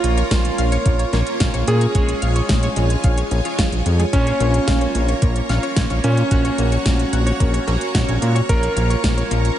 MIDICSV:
0, 0, Header, 1, 7, 480
1, 0, Start_track
1, 0, Key_signature, -5, "minor"
1, 0, Tempo, 545455
1, 1714, Time_signature, 4, 2, 24, 8
1, 8437, End_track
2, 0, Start_track
2, 0, Title_t, "String machine"
2, 0, Program_c, 0, 50
2, 0, Note_on_c, 0, 65, 81
2, 0, Note_on_c, 0, 70, 76
2, 0, Note_on_c, 0, 73, 75
2, 0, Note_on_c, 0, 82, 91
2, 1678, Note_off_c, 0, 82, 0
2, 1679, Note_off_c, 0, 70, 0
2, 1712, Note_on_c, 0, 80, 73
2, 1714, Note_on_c, 0, 85, 92
2, 3614, Note_off_c, 0, 80, 0
2, 3633, Note_on_c, 0, 82, 76
2, 5519, Note_off_c, 0, 65, 0
2, 5552, Note_on_c, 0, 66, 85
2, 7438, Note_off_c, 0, 73, 0
2, 7454, Note_off_c, 0, 66, 0
2, 7475, Note_on_c, 0, 65, 83
2, 7475, Note_on_c, 0, 73, 77
2, 8437, Note_off_c, 0, 65, 0
2, 8437, Note_off_c, 0, 73, 0
2, 8437, Note_off_c, 0, 82, 0
2, 8437, Note_off_c, 0, 85, 0
2, 8437, End_track
3, 0, Start_track
3, 0, Title_t, "Synth arpeggio sound"
3, 0, Program_c, 1, 84
3, 36, Note_on_c, 1, 58, 78
3, 149, Note_off_c, 1, 58, 0
3, 155, Note_on_c, 1, 73, 102
3, 241, Note_off_c, 1, 73, 0
3, 276, Note_on_c, 1, 58, 97
3, 327, Note_off_c, 1, 58, 0
3, 515, Note_on_c, 1, 77, 106
3, 629, Note_off_c, 1, 77, 0
3, 635, Note_on_c, 1, 73, 103
3, 749, Note_off_c, 1, 73, 0
3, 755, Note_on_c, 1, 58, 84
3, 869, Note_off_c, 1, 58, 0
3, 875, Note_on_c, 1, 73, 103
3, 961, Note_off_c, 1, 73, 0
3, 995, Note_on_c, 1, 58, 101
3, 1046, Note_off_c, 1, 58, 0
3, 1235, Note_on_c, 1, 77, 98
3, 1349, Note_off_c, 1, 77, 0
3, 1354, Note_on_c, 1, 73, 99
3, 1468, Note_off_c, 1, 73, 0
3, 1476, Note_on_c, 1, 58, 76
3, 1589, Note_off_c, 1, 58, 0
3, 1596, Note_on_c, 1, 73, 102
3, 1682, Note_off_c, 1, 73, 0
3, 1717, Note_on_c, 1, 56, 107
3, 1768, Note_off_c, 1, 56, 0
3, 1955, Note_on_c, 1, 77, 100
3, 2069, Note_off_c, 1, 77, 0
3, 2077, Note_on_c, 1, 73, 103
3, 2190, Note_off_c, 1, 73, 0
3, 2196, Note_on_c, 1, 56, 80
3, 2310, Note_off_c, 1, 56, 0
3, 2317, Note_on_c, 1, 73, 103
3, 2403, Note_off_c, 1, 73, 0
3, 2436, Note_on_c, 1, 56, 101
3, 2487, Note_off_c, 1, 56, 0
3, 2675, Note_on_c, 1, 77, 103
3, 2789, Note_off_c, 1, 77, 0
3, 2796, Note_on_c, 1, 73, 102
3, 2909, Note_off_c, 1, 73, 0
3, 2917, Note_on_c, 1, 61, 78
3, 2968, Note_off_c, 1, 61, 0
3, 3038, Note_on_c, 1, 65, 79
3, 3088, Note_off_c, 1, 65, 0
3, 3157, Note_on_c, 1, 65, 81
3, 3208, Note_off_c, 1, 65, 0
3, 3399, Note_on_c, 1, 68, 77
3, 3483, Note_off_c, 1, 68, 0
3, 3516, Note_on_c, 1, 56, 103
3, 3602, Note_off_c, 1, 56, 0
3, 3637, Note_on_c, 1, 58, 85
3, 3750, Note_off_c, 1, 58, 0
3, 3757, Note_on_c, 1, 73, 105
3, 3842, Note_off_c, 1, 73, 0
3, 3875, Note_on_c, 1, 58, 100
3, 3927, Note_off_c, 1, 58, 0
3, 4115, Note_on_c, 1, 77, 98
3, 4229, Note_off_c, 1, 77, 0
3, 4236, Note_on_c, 1, 73, 108
3, 4349, Note_off_c, 1, 73, 0
3, 4356, Note_on_c, 1, 58, 74
3, 4469, Note_off_c, 1, 58, 0
3, 4476, Note_on_c, 1, 73, 102
3, 4562, Note_off_c, 1, 73, 0
3, 4596, Note_on_c, 1, 58, 105
3, 4647, Note_off_c, 1, 58, 0
3, 4836, Note_on_c, 1, 77, 99
3, 4949, Note_off_c, 1, 77, 0
3, 4955, Note_on_c, 1, 73, 102
3, 5069, Note_off_c, 1, 73, 0
3, 5075, Note_on_c, 1, 58, 79
3, 5189, Note_off_c, 1, 58, 0
3, 5195, Note_on_c, 1, 73, 101
3, 5281, Note_off_c, 1, 73, 0
3, 5315, Note_on_c, 1, 58, 104
3, 5367, Note_off_c, 1, 58, 0
3, 5556, Note_on_c, 1, 78, 107
3, 5669, Note_off_c, 1, 78, 0
3, 5674, Note_on_c, 1, 73, 103
3, 5788, Note_off_c, 1, 73, 0
3, 5795, Note_on_c, 1, 58, 76
3, 5909, Note_off_c, 1, 58, 0
3, 5915, Note_on_c, 1, 73, 101
3, 6001, Note_off_c, 1, 73, 0
3, 6033, Note_on_c, 1, 58, 96
3, 6086, Note_off_c, 1, 58, 0
3, 6273, Note_on_c, 1, 78, 98
3, 6388, Note_off_c, 1, 78, 0
3, 6392, Note_on_c, 1, 73, 104
3, 6507, Note_off_c, 1, 73, 0
3, 6512, Note_on_c, 1, 58, 84
3, 6627, Note_off_c, 1, 58, 0
3, 6633, Note_on_c, 1, 73, 102
3, 6720, Note_off_c, 1, 73, 0
3, 6752, Note_on_c, 1, 58, 106
3, 6805, Note_off_c, 1, 58, 0
3, 6992, Note_on_c, 1, 78, 98
3, 7107, Note_off_c, 1, 78, 0
3, 7114, Note_on_c, 1, 73, 105
3, 7228, Note_off_c, 1, 73, 0
3, 7235, Note_on_c, 1, 58, 78
3, 7349, Note_off_c, 1, 58, 0
3, 7353, Note_on_c, 1, 73, 105
3, 7440, Note_off_c, 1, 73, 0
3, 7473, Note_on_c, 1, 58, 105
3, 7526, Note_off_c, 1, 58, 0
3, 7713, Note_on_c, 1, 77, 104
3, 7828, Note_off_c, 1, 77, 0
3, 7834, Note_on_c, 1, 73, 101
3, 7948, Note_off_c, 1, 73, 0
3, 7954, Note_on_c, 1, 58, 79
3, 8068, Note_off_c, 1, 58, 0
3, 8074, Note_on_c, 1, 73, 105
3, 8161, Note_off_c, 1, 73, 0
3, 8192, Note_on_c, 1, 58, 100
3, 8245, Note_off_c, 1, 58, 0
3, 8437, End_track
4, 0, Start_track
4, 0, Title_t, "Electric grand piano"
4, 0, Program_c, 2, 2
4, 0, Note_on_c, 2, 65, 98
4, 659, Note_off_c, 2, 65, 0
4, 1478, Note_on_c, 2, 68, 95
4, 3540, Note_off_c, 2, 68, 0
4, 3635, Note_on_c, 2, 61, 95
4, 4499, Note_off_c, 2, 61, 0
4, 5315, Note_on_c, 2, 61, 93
4, 7379, Note_off_c, 2, 61, 0
4, 7474, Note_on_c, 2, 70, 96
4, 8338, Note_off_c, 2, 70, 0
4, 8437, End_track
5, 0, Start_track
5, 0, Title_t, "Analog polysynth"
5, 0, Program_c, 3, 90
5, 0, Note_on_c, 3, 58, 96
5, 0, Note_on_c, 3, 61, 93
5, 0, Note_on_c, 3, 65, 92
5, 0, Note_on_c, 3, 73, 107
5, 966, Note_off_c, 3, 58, 0
5, 966, Note_off_c, 3, 61, 0
5, 966, Note_off_c, 3, 65, 0
5, 967, Note_off_c, 3, 73, 0
5, 995, Note_on_c, 3, 61, 90
5, 996, Note_on_c, 3, 58, 97
5, 996, Note_on_c, 3, 65, 91
5, 996, Note_on_c, 3, 73, 114
5, 1686, Note_off_c, 3, 61, 0
5, 1686, Note_off_c, 3, 65, 0
5, 1686, Note_off_c, 3, 73, 0
5, 1687, Note_off_c, 3, 58, 0
5, 1715, Note_on_c, 3, 73, 107
5, 1716, Note_on_c, 3, 56, 100
5, 1716, Note_on_c, 3, 61, 89
5, 1716, Note_on_c, 3, 65, 91
5, 2886, Note_off_c, 3, 56, 0
5, 2886, Note_off_c, 3, 73, 0
5, 2887, Note_off_c, 3, 61, 0
5, 2887, Note_off_c, 3, 65, 0
5, 3035, Note_on_c, 3, 56, 83
5, 3035, Note_on_c, 3, 61, 79
5, 3035, Note_on_c, 3, 65, 78
5, 3035, Note_on_c, 3, 73, 92
5, 3177, Note_off_c, 3, 56, 0
5, 3177, Note_off_c, 3, 61, 0
5, 3177, Note_off_c, 3, 65, 0
5, 3177, Note_off_c, 3, 73, 0
5, 3635, Note_on_c, 3, 65, 89
5, 3636, Note_on_c, 3, 58, 102
5, 3636, Note_on_c, 3, 61, 89
5, 3636, Note_on_c, 3, 73, 111
5, 4806, Note_off_c, 3, 58, 0
5, 4806, Note_off_c, 3, 65, 0
5, 4806, Note_off_c, 3, 73, 0
5, 4807, Note_off_c, 3, 61, 0
5, 4833, Note_on_c, 3, 65, 93
5, 4834, Note_on_c, 3, 58, 99
5, 4834, Note_on_c, 3, 61, 92
5, 4834, Note_on_c, 3, 73, 109
5, 5525, Note_off_c, 3, 61, 0
5, 5525, Note_off_c, 3, 65, 0
5, 5526, Note_off_c, 3, 58, 0
5, 5526, Note_off_c, 3, 73, 0
5, 5553, Note_on_c, 3, 58, 96
5, 5553, Note_on_c, 3, 61, 88
5, 5553, Note_on_c, 3, 66, 88
5, 5553, Note_on_c, 3, 73, 109
5, 6725, Note_off_c, 3, 58, 0
5, 6725, Note_off_c, 3, 61, 0
5, 6725, Note_off_c, 3, 66, 0
5, 6725, Note_off_c, 3, 73, 0
5, 6754, Note_on_c, 3, 58, 103
5, 6755, Note_on_c, 3, 61, 94
5, 6755, Note_on_c, 3, 66, 92
5, 6755, Note_on_c, 3, 73, 114
5, 7446, Note_off_c, 3, 58, 0
5, 7446, Note_off_c, 3, 61, 0
5, 7446, Note_off_c, 3, 66, 0
5, 7446, Note_off_c, 3, 73, 0
5, 7474, Note_on_c, 3, 58, 102
5, 7474, Note_on_c, 3, 61, 89
5, 7474, Note_on_c, 3, 65, 89
5, 7474, Note_on_c, 3, 73, 110
5, 8437, Note_off_c, 3, 58, 0
5, 8437, Note_off_c, 3, 61, 0
5, 8437, Note_off_c, 3, 65, 0
5, 8437, Note_off_c, 3, 73, 0
5, 8437, End_track
6, 0, Start_track
6, 0, Title_t, "Analog synth bass"
6, 0, Program_c, 4, 38
6, 34, Note_on_c, 4, 34, 96
6, 202, Note_off_c, 4, 34, 0
6, 275, Note_on_c, 4, 34, 99
6, 443, Note_off_c, 4, 34, 0
6, 514, Note_on_c, 4, 34, 83
6, 682, Note_off_c, 4, 34, 0
6, 755, Note_on_c, 4, 34, 86
6, 923, Note_off_c, 4, 34, 0
6, 995, Note_on_c, 4, 34, 100
6, 1079, Note_off_c, 4, 34, 0
6, 1236, Note_on_c, 4, 34, 97
6, 1319, Note_off_c, 4, 34, 0
6, 1355, Note_on_c, 4, 34, 90
6, 1439, Note_off_c, 4, 34, 0
6, 1474, Note_on_c, 4, 46, 98
6, 1642, Note_off_c, 4, 46, 0
6, 1716, Note_on_c, 4, 34, 102
6, 1883, Note_off_c, 4, 34, 0
6, 1956, Note_on_c, 4, 34, 96
6, 2123, Note_off_c, 4, 34, 0
6, 2196, Note_on_c, 4, 34, 97
6, 2364, Note_off_c, 4, 34, 0
6, 2436, Note_on_c, 4, 34, 86
6, 2603, Note_off_c, 4, 34, 0
6, 2677, Note_on_c, 4, 34, 86
6, 2844, Note_off_c, 4, 34, 0
6, 2914, Note_on_c, 4, 34, 97
6, 2999, Note_off_c, 4, 34, 0
6, 3156, Note_on_c, 4, 34, 102
6, 3239, Note_off_c, 4, 34, 0
6, 3275, Note_on_c, 4, 34, 88
6, 3359, Note_off_c, 4, 34, 0
6, 3395, Note_on_c, 4, 41, 90
6, 3563, Note_off_c, 4, 41, 0
6, 3636, Note_on_c, 4, 34, 102
6, 3804, Note_off_c, 4, 34, 0
6, 3875, Note_on_c, 4, 34, 97
6, 4043, Note_off_c, 4, 34, 0
6, 4116, Note_on_c, 4, 34, 98
6, 4283, Note_off_c, 4, 34, 0
6, 4355, Note_on_c, 4, 34, 80
6, 4523, Note_off_c, 4, 34, 0
6, 4596, Note_on_c, 4, 34, 87
6, 4763, Note_off_c, 4, 34, 0
6, 4835, Note_on_c, 4, 34, 97
6, 4919, Note_off_c, 4, 34, 0
6, 5076, Note_on_c, 4, 34, 96
6, 5159, Note_off_c, 4, 34, 0
6, 5195, Note_on_c, 4, 34, 89
6, 5279, Note_off_c, 4, 34, 0
6, 5314, Note_on_c, 4, 46, 95
6, 5482, Note_off_c, 4, 46, 0
6, 5556, Note_on_c, 4, 34, 107
6, 5723, Note_off_c, 4, 34, 0
6, 5793, Note_on_c, 4, 34, 94
6, 5962, Note_off_c, 4, 34, 0
6, 6035, Note_on_c, 4, 34, 96
6, 6203, Note_off_c, 4, 34, 0
6, 6273, Note_on_c, 4, 34, 82
6, 6442, Note_off_c, 4, 34, 0
6, 6515, Note_on_c, 4, 34, 84
6, 6683, Note_off_c, 4, 34, 0
6, 6754, Note_on_c, 4, 34, 98
6, 6838, Note_off_c, 4, 34, 0
6, 6994, Note_on_c, 4, 34, 96
6, 7078, Note_off_c, 4, 34, 0
6, 7113, Note_on_c, 4, 34, 92
6, 7198, Note_off_c, 4, 34, 0
6, 7234, Note_on_c, 4, 46, 93
6, 7402, Note_off_c, 4, 46, 0
6, 7475, Note_on_c, 4, 34, 103
6, 7643, Note_off_c, 4, 34, 0
6, 7713, Note_on_c, 4, 34, 96
6, 7882, Note_off_c, 4, 34, 0
6, 7954, Note_on_c, 4, 34, 93
6, 8122, Note_off_c, 4, 34, 0
6, 8195, Note_on_c, 4, 34, 85
6, 8363, Note_off_c, 4, 34, 0
6, 8437, End_track
7, 0, Start_track
7, 0, Title_t, "Drums"
7, 34, Note_on_c, 9, 42, 66
7, 122, Note_off_c, 9, 42, 0
7, 154, Note_on_c, 9, 42, 40
7, 242, Note_off_c, 9, 42, 0
7, 274, Note_on_c, 9, 38, 127
7, 274, Note_on_c, 9, 42, 96
7, 275, Note_on_c, 9, 36, 127
7, 362, Note_off_c, 9, 38, 0
7, 362, Note_off_c, 9, 42, 0
7, 363, Note_off_c, 9, 36, 0
7, 395, Note_on_c, 9, 42, 40
7, 483, Note_off_c, 9, 42, 0
7, 514, Note_on_c, 9, 42, 68
7, 602, Note_off_c, 9, 42, 0
7, 634, Note_on_c, 9, 42, 43
7, 722, Note_off_c, 9, 42, 0
7, 753, Note_on_c, 9, 42, 97
7, 755, Note_on_c, 9, 36, 127
7, 841, Note_off_c, 9, 42, 0
7, 843, Note_off_c, 9, 36, 0
7, 874, Note_on_c, 9, 42, 41
7, 962, Note_off_c, 9, 42, 0
7, 994, Note_on_c, 9, 38, 39
7, 994, Note_on_c, 9, 42, 38
7, 1082, Note_off_c, 9, 38, 0
7, 1082, Note_off_c, 9, 42, 0
7, 1114, Note_on_c, 9, 42, 39
7, 1202, Note_off_c, 9, 42, 0
7, 1234, Note_on_c, 9, 38, 126
7, 1234, Note_on_c, 9, 42, 104
7, 1236, Note_on_c, 9, 36, 127
7, 1322, Note_off_c, 9, 38, 0
7, 1322, Note_off_c, 9, 42, 0
7, 1324, Note_off_c, 9, 36, 0
7, 1354, Note_on_c, 9, 42, 41
7, 1442, Note_off_c, 9, 42, 0
7, 1474, Note_on_c, 9, 42, 67
7, 1562, Note_off_c, 9, 42, 0
7, 1594, Note_on_c, 9, 42, 42
7, 1682, Note_off_c, 9, 42, 0
7, 1715, Note_on_c, 9, 36, 125
7, 1715, Note_on_c, 9, 42, 94
7, 1803, Note_off_c, 9, 36, 0
7, 1803, Note_off_c, 9, 42, 0
7, 1835, Note_on_c, 9, 42, 42
7, 1923, Note_off_c, 9, 42, 0
7, 1954, Note_on_c, 9, 42, 63
7, 2042, Note_off_c, 9, 42, 0
7, 2074, Note_on_c, 9, 42, 39
7, 2162, Note_off_c, 9, 42, 0
7, 2193, Note_on_c, 9, 38, 127
7, 2193, Note_on_c, 9, 42, 96
7, 2196, Note_on_c, 9, 36, 127
7, 2281, Note_off_c, 9, 38, 0
7, 2281, Note_off_c, 9, 42, 0
7, 2284, Note_off_c, 9, 36, 0
7, 2312, Note_on_c, 9, 42, 38
7, 2400, Note_off_c, 9, 42, 0
7, 2432, Note_on_c, 9, 42, 66
7, 2520, Note_off_c, 9, 42, 0
7, 2553, Note_on_c, 9, 42, 41
7, 2641, Note_off_c, 9, 42, 0
7, 2673, Note_on_c, 9, 42, 93
7, 2676, Note_on_c, 9, 36, 127
7, 2761, Note_off_c, 9, 42, 0
7, 2764, Note_off_c, 9, 36, 0
7, 2794, Note_on_c, 9, 42, 41
7, 2882, Note_off_c, 9, 42, 0
7, 2915, Note_on_c, 9, 42, 38
7, 3003, Note_off_c, 9, 42, 0
7, 3037, Note_on_c, 9, 42, 40
7, 3125, Note_off_c, 9, 42, 0
7, 3156, Note_on_c, 9, 36, 124
7, 3156, Note_on_c, 9, 38, 125
7, 3156, Note_on_c, 9, 42, 93
7, 3244, Note_off_c, 9, 36, 0
7, 3244, Note_off_c, 9, 38, 0
7, 3244, Note_off_c, 9, 42, 0
7, 3277, Note_on_c, 9, 42, 40
7, 3365, Note_off_c, 9, 42, 0
7, 3395, Note_on_c, 9, 42, 64
7, 3483, Note_off_c, 9, 42, 0
7, 3516, Note_on_c, 9, 42, 42
7, 3604, Note_off_c, 9, 42, 0
7, 3636, Note_on_c, 9, 36, 120
7, 3636, Note_on_c, 9, 42, 88
7, 3724, Note_off_c, 9, 36, 0
7, 3724, Note_off_c, 9, 42, 0
7, 3756, Note_on_c, 9, 42, 37
7, 3844, Note_off_c, 9, 42, 0
7, 3876, Note_on_c, 9, 42, 60
7, 3964, Note_off_c, 9, 42, 0
7, 3996, Note_on_c, 9, 42, 37
7, 4084, Note_off_c, 9, 42, 0
7, 4115, Note_on_c, 9, 38, 123
7, 4115, Note_on_c, 9, 42, 93
7, 4116, Note_on_c, 9, 36, 120
7, 4203, Note_off_c, 9, 38, 0
7, 4203, Note_off_c, 9, 42, 0
7, 4204, Note_off_c, 9, 36, 0
7, 4234, Note_on_c, 9, 42, 38
7, 4322, Note_off_c, 9, 42, 0
7, 4355, Note_on_c, 9, 42, 67
7, 4443, Note_off_c, 9, 42, 0
7, 4474, Note_on_c, 9, 42, 40
7, 4562, Note_off_c, 9, 42, 0
7, 4594, Note_on_c, 9, 42, 87
7, 4596, Note_on_c, 9, 36, 126
7, 4682, Note_off_c, 9, 42, 0
7, 4684, Note_off_c, 9, 36, 0
7, 4714, Note_on_c, 9, 42, 39
7, 4802, Note_off_c, 9, 42, 0
7, 4834, Note_on_c, 9, 38, 37
7, 4834, Note_on_c, 9, 42, 36
7, 4922, Note_off_c, 9, 38, 0
7, 4922, Note_off_c, 9, 42, 0
7, 4955, Note_on_c, 9, 42, 36
7, 5043, Note_off_c, 9, 42, 0
7, 5073, Note_on_c, 9, 38, 125
7, 5073, Note_on_c, 9, 42, 93
7, 5076, Note_on_c, 9, 36, 126
7, 5161, Note_off_c, 9, 38, 0
7, 5161, Note_off_c, 9, 42, 0
7, 5164, Note_off_c, 9, 36, 0
7, 5194, Note_on_c, 9, 42, 40
7, 5282, Note_off_c, 9, 42, 0
7, 5314, Note_on_c, 9, 42, 63
7, 5402, Note_off_c, 9, 42, 0
7, 5433, Note_on_c, 9, 42, 40
7, 5521, Note_off_c, 9, 42, 0
7, 5554, Note_on_c, 9, 42, 88
7, 5555, Note_on_c, 9, 36, 117
7, 5642, Note_off_c, 9, 42, 0
7, 5643, Note_off_c, 9, 36, 0
7, 5674, Note_on_c, 9, 42, 39
7, 5762, Note_off_c, 9, 42, 0
7, 5794, Note_on_c, 9, 42, 59
7, 5882, Note_off_c, 9, 42, 0
7, 5914, Note_on_c, 9, 42, 37
7, 6002, Note_off_c, 9, 42, 0
7, 6034, Note_on_c, 9, 38, 121
7, 6034, Note_on_c, 9, 42, 87
7, 6035, Note_on_c, 9, 36, 117
7, 6122, Note_off_c, 9, 38, 0
7, 6122, Note_off_c, 9, 42, 0
7, 6123, Note_off_c, 9, 36, 0
7, 6155, Note_on_c, 9, 42, 39
7, 6243, Note_off_c, 9, 42, 0
7, 6274, Note_on_c, 9, 42, 64
7, 6362, Note_off_c, 9, 42, 0
7, 6395, Note_on_c, 9, 42, 40
7, 6483, Note_off_c, 9, 42, 0
7, 6515, Note_on_c, 9, 36, 117
7, 6515, Note_on_c, 9, 42, 93
7, 6603, Note_off_c, 9, 36, 0
7, 6603, Note_off_c, 9, 42, 0
7, 6635, Note_on_c, 9, 42, 39
7, 6723, Note_off_c, 9, 42, 0
7, 6755, Note_on_c, 9, 42, 36
7, 6843, Note_off_c, 9, 42, 0
7, 6874, Note_on_c, 9, 42, 36
7, 6962, Note_off_c, 9, 42, 0
7, 6994, Note_on_c, 9, 36, 116
7, 6995, Note_on_c, 9, 38, 118
7, 6995, Note_on_c, 9, 42, 93
7, 7082, Note_off_c, 9, 36, 0
7, 7083, Note_off_c, 9, 38, 0
7, 7083, Note_off_c, 9, 42, 0
7, 7115, Note_on_c, 9, 42, 40
7, 7203, Note_off_c, 9, 42, 0
7, 7235, Note_on_c, 9, 42, 63
7, 7323, Note_off_c, 9, 42, 0
7, 7356, Note_on_c, 9, 42, 40
7, 7444, Note_off_c, 9, 42, 0
7, 7474, Note_on_c, 9, 36, 117
7, 7474, Note_on_c, 9, 42, 92
7, 7562, Note_off_c, 9, 36, 0
7, 7562, Note_off_c, 9, 42, 0
7, 7594, Note_on_c, 9, 42, 42
7, 7682, Note_off_c, 9, 42, 0
7, 7715, Note_on_c, 9, 42, 63
7, 7803, Note_off_c, 9, 42, 0
7, 7836, Note_on_c, 9, 42, 37
7, 7924, Note_off_c, 9, 42, 0
7, 7955, Note_on_c, 9, 36, 120
7, 7955, Note_on_c, 9, 38, 120
7, 7955, Note_on_c, 9, 42, 95
7, 8043, Note_off_c, 9, 36, 0
7, 8043, Note_off_c, 9, 38, 0
7, 8043, Note_off_c, 9, 42, 0
7, 8076, Note_on_c, 9, 42, 39
7, 8164, Note_off_c, 9, 42, 0
7, 8194, Note_on_c, 9, 42, 65
7, 8282, Note_off_c, 9, 42, 0
7, 8316, Note_on_c, 9, 42, 41
7, 8404, Note_off_c, 9, 42, 0
7, 8437, End_track
0, 0, End_of_file